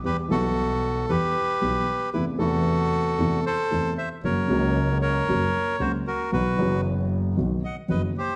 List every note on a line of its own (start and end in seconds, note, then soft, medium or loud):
0.03 0.26 E2 soft
0.03 0.27 E2 soft
0.03 0.26 E3 soft
0.03 0.26 G3 soft
0.03 0.26 B3 soft
0.03 0.26 G4 soft
0.03 0.17 G4 medium
0.03 0.17 B4 medium
0.28 1.05 B1 medium
0.28 1.05 B2 medium
0.28 1.04 E3 medium
0.28 1.05 G3 soft
0.28 1.05 B3 soft
0.28 1.06 F#4 soft
0.28 1.12 A4 medium
0.33 1.06 E4 medium
1.09 1.31 E2 soft
1.09 1.31 E2 medium
1.09 1.31 E3 soft
1.09 1.31 G3 soft
1.09 1.31 B3 soft
1.09 1.31 G4 soft
1.09 2.10 G4 medium
1.09 2.10 B4 medium
1.61 1.83 B1 soft
1.61 1.84 B1 medium
1.61 1.83 B2 soft
1.61 1.83 E3 soft
1.61 1.83 G3 soft
1.61 1.83 B3 soft
1.61 1.83 G4 soft
2.13 2.36 E2 soft
2.13 2.36 C3 soft
2.13 2.36 E3 soft
2.13 2.36 A3 soft
2.13 2.36 B3 soft
2.13 2.36 E4 soft
2.13 2.26 E4 medium
2.13 2.25 B4 medium
2.38 3.14 E2 medium
2.38 3.15 E2 medium
2.38 3.13 C3 medium
2.38 3.14 E3 medium
2.38 3.14 A3 medium
2.38 3.14 B3 medium
2.38 3.15 E4 medium
2.38 3.40 F#4 medium
2.38 3.45 A4 medium
3.18 3.40 E2 medium
3.18 3.41 E2 medium
3.18 3.41 C3 soft
3.18 3.41 E3 soft
3.18 3.40 A3 soft
3.18 3.41 B3 soft
3.18 3.41 E4 soft
3.46 3.94 A4 medium
3.46 3.94 C5 medium
3.71 3.93 E2 medium
3.71 3.93 E2 soft
3.71 3.93 C3 soft
3.71 3.93 E3 soft
3.71 3.93 A3 soft
3.71 3.93 B3 soft
3.71 3.93 E4 soft
3.98 4.09 C5 medium
3.98 4.09 E5 medium
4.23 4.45 F#1 medium
4.23 4.46 F#2 soft
4.23 4.46 C#3 soft
4.23 4.46 F#3 soft
4.23 4.46 A#3 soft
4.23 4.45 F#4 soft
4.23 4.98 A#4 medium
4.23 4.98 C#5 medium
4.49 5.23 C#2 medium
4.49 5.24 C#2 medium
4.49 5.24 C#3 medium
4.49 5.24 F#3 medium
4.49 5.24 A#3 medium
4.49 5.25 F#4 medium
5.02 5.76 A#4 medium
5.02 5.82 C#5 medium
5.28 5.50 F#1 medium
5.28 5.50 F#2 soft
5.28 5.50 C#3 soft
5.28 5.50 F#3 medium
5.28 5.50 A#3 soft
5.28 5.50 F#4 soft
5.80 6.02 C#2 soft
5.80 6.02 C#3 soft
5.80 6.02 F#3 soft
5.80 6.02 A#3 soft
5.80 6.02 F#4 soft
5.80 5.92 F#4 soft
5.80 5.92 C5 medium
6.07 6.31 F#4 medium
6.07 6.31 A#4 medium
6.32 6.54 B1 soft
6.32 6.54 B2 soft
6.32 6.54 E3 soft
6.32 6.54 F#3 soft
6.32 6.54 B3 soft
6.32 6.81 F#4 soft
6.32 6.54 F#4 soft
6.32 6.81 B4 medium
6.57 7.33 F#1 medium
6.57 7.33 F#2 medium
6.57 7.32 E3 medium
6.57 7.33 F#3 medium
6.57 7.34 B3 medium
6.61 7.34 F#4 medium
7.36 7.59 B1 soft
7.36 7.59 B1 medium
7.36 7.59 B2 soft
7.36 7.59 D#3 soft
7.36 7.59 F#3 soft
7.36 7.59 B3 soft
7.36 7.59 F#4 soft
7.64 7.76 D#5 soft
7.64 7.77 F#5 medium
7.88 8.11 F#1 soft
7.88 8.12 F#1 soft
7.88 8.11 F#2 soft
7.88 8.11 D#3 soft
7.88 8.11 F#3 soft
7.88 8.11 B3 soft
7.88 8.11 F#4 soft
7.88 8.02 B4 soft
7.88 8.02 D#5 medium
8.18 8.36 G4 medium
8.18 8.36 C5 medium